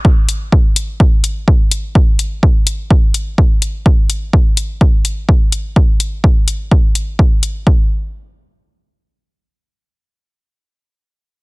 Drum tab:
HH |-x-x-x-x|-x-x-x-x|-x-x-x-x|-x-x-x-x|
BD |o-o-o-o-|o-o-o-o-|o-o-o-o-|o-o-o-o-|

HH |--------|--------|
BD |o-------|--------|